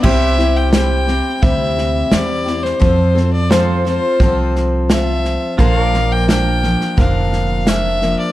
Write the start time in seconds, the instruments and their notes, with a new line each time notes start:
0.03 upright bass C2, steel-string acoustic guitar C3 G3 C4 E4 G4, pedal steel guitar E4 G4 C5, fiddle E5, kick, snare, crash
0.37 steel-string acoustic guitar C4 E4 G4, snare
0.56 fiddle G5
0.72 steel-string acoustic guitar G3 C4 E4 G4, fiddle G5, snare, hi-hat pedal
1.07 steel-string acoustic guitar C4 E4 G4, snare
1.42 upright bass D2, steel-string acoustic guitar C3 G3 C4 E4 G4, fiddle E5, kick, snare
1.78 snare
2.11 upright bass E2, steel-string acoustic guitar G3 C4 E4 G4, fiddle D5, snare, hi-hat pedal
2.46 steel-string acoustic guitar C4 E4 G4, snare
2.63 fiddle C5, snare
2.80 upright bass F2, steel-string acoustic guitar F3 C4 F4 A4, kick, snare
3.15 steel-string acoustic guitar C4 F4 A4, snare
3.33 fiddle D5
3.50 steel-string acoustic guitar F3 C4 F4 A4, pedal steel guitar F4 A4 C5, fiddle C5, snare, hi-hat pedal
3.85 steel-string acoustic guitar C4 F4 A4, fiddle C5, snare
4.20 upright bass C2, steel-string acoustic guitar F3 C4 F4 A4, kick, snare
4.56 snare
4.89 steel-string acoustic guitar F3 C4 F4 A4, fiddle E5, snare, hi-hat pedal
5.25 snare
5.58 upright bass A#1, steel-string acoustic guitar A#2 D3 F3 A#3 D4 A#4, pedal steel guitar F4 A4 C5, fiddle F5, kick, snare
5.79 pedal steel guitar A#4
5.85 pedal steel guitar D5
5.93 steel-string acoustic guitar F3 A#3 D4 A#4, snare
6.12 fiddle G5
6.28 steel-string acoustic guitar F3 A#3 D4 A#4, fiddle G5, snare, hi-hat pedal
6.63 steel-string acoustic guitar F3 A#3 D4 A#4, snare
6.81 snare
6.97 upright bass F1, steel-string acoustic guitar A#2 D3 F3 A#3 D4 A#4, fiddle F5, kick, snare
7.33 snare
7.67 steel-string acoustic guitar F3 A#3 D4 A#4, fiddle E5, snare, hi-hat pedal
8.01 steel-string acoustic guitar F3 A#3 D4 A#4, snare
8.19 fiddle D5